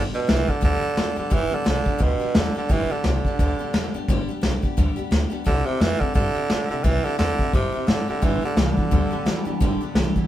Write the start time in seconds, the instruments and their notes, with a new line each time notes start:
Already playing: steel-string acoustic guitar G2 D3 G3 B3 D4 G4
0.13 tenor saxophone B2, steel-string acoustic guitar G3 B3 D4 G4
0.27 upright bass C2, tenor saxophone E3, steel-string acoustic guitar G3 B3 D4 G4, snare, open hi-hat
0.47 tenor saxophone D3, steel-string acoustic guitar G3 B3 D4 G4, kick
0.61 upright bass D2, steel-string acoustic guitar G2 D3 G3 B3 D4 G4, tenor saxophone D3, kick, open hi-hat
0.81 steel-string acoustic guitar G3 B3 D4 G4, muted upright bass stroke
0.96 upright bass E2, steel-string acoustic guitar G3 B3 D4 G4, snare, open hi-hat
1.16 upright bass G2, tenor saxophone D3, steel-string acoustic guitar G3 B3 D4 G4
1.30 upright bass G1, steel-string acoustic guitar G2 D3 G3 B3 D4 G4, tenor saxophone E3, kick, open hi-hat
1.50 steel-string acoustic guitar G3 B3 D4 G4, muted upright bass stroke
1.54 tenor saxophone D3
1.64 upright bass B1, steel-string acoustic guitar G3 B3 D4 G4, snare, open hi-hat
1.70 tenor saxophone D3
1.85 steel-string acoustic guitar G3 B3 D4 G4, kick
1.98 upright bass D2, steel-string acoustic guitar G2 D3 G3 B3 D4 G4, kick, open hi-hat
2.02 tenor saxophone B2
2.19 steel-string acoustic guitar G3 B3 D4 G4, muted upright bass stroke
2.34 upright bass E2, tenor saxophone D3, steel-string acoustic guitar G3 B3 D4 G4, snare, open hi-hat
2.55 tenor saxophone D3, steel-string acoustic guitar G3 B3 D4 G4, muted upright bass stroke
2.69 upright bass G1, steel-string acoustic guitar G2 D3 G3 B3 D4 G4, tenor saxophone E3, kick, open hi-hat
2.90 tenor saxophone D3, steel-string acoustic guitar G3 B3 D4 G4
3.04 upright bass C2, tenor saxophone D3, steel-string acoustic guitar G3 B3 D4 G4, snare, open hi-hat
3.25 steel-string acoustic guitar G3 B3 D4 G4, kick
3.39 upright bass D2, steel-string acoustic guitar G2 D3 G3 B3 D4 G4, kick, open hi-hat
3.59 steel-string acoustic guitar G3 B3 D4 G4
3.73 upright bass E2, steel-string acoustic guitar G3 B3 D4 G4, snare
3.94 upright bass G2, steel-string acoustic guitar G3 B3 D4 G4
4.08 upright bass G1, steel-string acoustic guitar G2 D3 G3 B3 D4 G4, kick, open hi-hat
4.28 steel-string acoustic guitar G3 B3 D4 G4, muted upright bass stroke
4.41 upright bass B1, steel-string acoustic guitar G3 B3 D4 G4, snare, open hi-hat
4.62 steel-string acoustic guitar G3 B3 D4 G4, kick
4.77 upright bass D2, steel-string acoustic guitar G2 D3 G3 B3 D4 G4, kick, open hi-hat
4.96 steel-string acoustic guitar G3 B3 D4 G4, muted upright bass stroke
5.11 upright bass D2, steel-string acoustic guitar G3 B3 D4 G4, snare, open hi-hat
5.30 steel-string acoustic guitar G3 B3 D4 G4
5.44 upright bass C2, steel-string acoustic guitar C3 G3 C4 E4 G4, tenor saxophone D3, kick, open hi-hat
5.65 tenor saxophone C3, steel-string acoustic guitar C4 E4 G4
5.80 upright bass F2, tenor saxophone E3, steel-string acoustic guitar G3 E4 G4, snare
5.99 tenor saxophone D3, steel-string acoustic guitar C4 E4 G4, muted upright bass stroke, kick
6.14 upright bass G2, steel-string acoustic guitar C3 G3 C4 E4 G4, tenor saxophone D3, kick, open hi-hat
6.34 steel-string acoustic guitar C4 E4 G4, muted upright bass stroke
6.48 upright bass A2, steel-string acoustic guitar G3 C4 E4 G4, snare, open hi-hat
6.69 upright bass C3, tenor saxophone D3, steel-string acoustic guitar C4 E4 G4
6.84 upright bass C2, steel-string acoustic guitar C3 G3 C4 E4 G4, tenor saxophone E3, kick, open hi-hat
7.04 tenor saxophone D3, steel-string acoustic guitar C4 E4 G4, muted upright bass stroke
7.18 upright bass E2, tenor saxophone D3, steel-string acoustic guitar G3 C4 E4 G4, snare
7.38 steel-string acoustic guitar C4 E4 G4, kick
7.53 upright bass G2, steel-string acoustic guitar C3 G3 C4 E4 G4, tenor saxophone C3, kick, open hi-hat
7.72 steel-string acoustic guitar C4 E4 G4, muted upright bass stroke
7.87 upright bass A2, tenor saxophone D3, steel-string acoustic guitar G3 C4 E4 G4, snare, open hi-hat
8.08 tenor saxophone D3, steel-string acoustic guitar C4 E4 G4, muted upright bass stroke
8.22 upright bass G1, steel-string acoustic guitar G2 D3 G3 B3 D4 G4, clean electric guitar G2 D3, tenor saxophone E3, kick, open hi-hat
8.42 clean electric guitar G2 D3, tenor saxophone D3, steel-string acoustic guitar G3 B3 D4 G4, muted upright bass stroke
8.56 upright bass C2, clean electric guitar G2 E3, tenor saxophone D3, steel-string acoustic guitar G3 B3 D4 G4, snare, open hi-hat
8.77 clean electric guitar G2 E3, steel-string acoustic guitar G3 B3 D4 G4, kick
8.91 upright bass D2, steel-string acoustic guitar G2 D3 G3 B3 D4 G4, clean electric guitar G2 D3, kick, open hi-hat
9.11 clean electric guitar G2 D3, steel-string acoustic guitar G3 B3 D4 G4, muted upright bass stroke
9.25 upright bass E2, clean electric guitar G2 E3, steel-string acoustic guitar G3 B3 D4 G4, snare
9.45 upright bass G2, clean electric guitar G2 E3, steel-string acoustic guitar G3 B3 D4 G4
9.60 upright bass G1, steel-string acoustic guitar G2 D3 G3 B3 D4 G4, clean electric guitar G2 D3, kick, open hi-hat
9.80 clean electric guitar G2 D3, steel-string acoustic guitar G3 B3 D4 G4, muted upright bass stroke
9.94 upright bass B1, clean electric guitar G2 E3, steel-string acoustic guitar G3 B3 D4 G4, snare, open hi-hat
10.15 clean electric guitar G2 E3, steel-string acoustic guitar G3 B3 D4 G4, kick